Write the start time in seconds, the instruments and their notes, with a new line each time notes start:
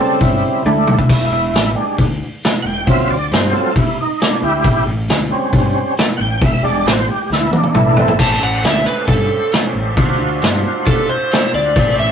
0.00 tonewheel organ C#3 G3 C4 A4
0.21 fingered electric bass G2, tonewheel organ E4, kick, open hi-hat
0.65 fingered electric bass D2, tonewheel organ D3 A3 D4 E4, high tom
0.87 mid tom
0.99 kick
1.09 fingered electric bass E1, kick, open hi-hat, splash
1.31 fingered electric bass E1, tonewheel organ E4
1.53 fingered electric bass A1, snare, open hi-hat
1.75 tonewheel organ G3 G#3 D4, muted fingered electric bass stroke
1.98 fingered electric bass D2, kick, open hi-hat
2.43 snare, open hi-hat
2.62 fingered electric bass E1, tonewheel organ F#5
2.67 tonewheel organ G5
2.87 fingered electric bass D2, tonewheel organ F#3 C4 F4 E5, kick, open hi-hat
3.09 fingered electric bass D2, tonewheel organ D5
3.32 fingered electric bass G2, tonewheel organ C5, snare, open hi-hat
3.51 tonewheel organ F#3 C4 F4 A4, muted fingered electric bass stroke
3.76 fingered electric bass C3, tonewheel organ E4, kick, open hi-hat
4.01 tonewheel organ D#4
4.20 tonewheel organ D4, snare, open hi-hat
4.42 fingered electric bass D2, tonewheel organ E4 G4
4.64 fingered electric bass A1, kick, open hi-hat
4.86 fingered electric bass A1
5.08 fingered electric bass D2, snare, open hi-hat
5.31 tonewheel organ G3 C4 C#4, muted fingered electric bass stroke
5.53 fingered electric bass G2, kick, open hi-hat
5.97 snare, open hi-hat
6.17 fingered electric bass A1, tonewheel organ F#5
6.21 tonewheel organ G5
6.42 fingered electric bass E1, tonewheel organ E5, kick, open hi-hat
6.63 fingered electric bass E1, tonewheel organ G3 G#3 D4 D5
6.86 fingered electric bass A1, tonewheel organ C5, snare, open hi-hat
7.08 tonewheel organ G4, muted fingered electric bass stroke
7.30 fingered electric bass D2, tonewheel organ E4, snare
7.53 mid tom
7.57 tonewheel organ D4
7.63 mid tom
7.74 fingered electric bass A1, tonewheel organ E3 A3 D4 E4, mid tom
7.97 tonewheel organ C4 A4, floor tom
8.08 floor tom
8.19 fingered electric bass A1, tonewheel organ C#4 G4 A4 C5, electric slide guitar A5, kick, crash
8.42 fingered electric bass A1, electric slide guitar F#5
8.63 fingered electric bass D2, electric slide guitar E5, snare, crash
8.86 electric slide guitar B4, muted fingered electric bass stroke
9.08 fingered electric bass G2, electric slide guitar A4, kick, crash
9.52 snare, crash
9.74 fingered electric bass A1
9.97 fingered electric bass D2, tonewheel organ D4 F4 F#4 C5, kick, crash
10.20 fingered electric bass D2
10.42 fingered electric bass G2, snare, crash
10.64 muted fingered electric bass stroke
10.87 fingered electric bass C3, electric slide guitar A4, kick, crash
11.09 electric slide guitar C5
11.31 snare, crash
11.54 fingered electric bass D2, electric slide guitar D5
11.76 fingered electric bass A1, tonewheel organ C#4 G4 A4 C5, kick, crash
11.98 fingered electric bass A1, electric slide guitar E5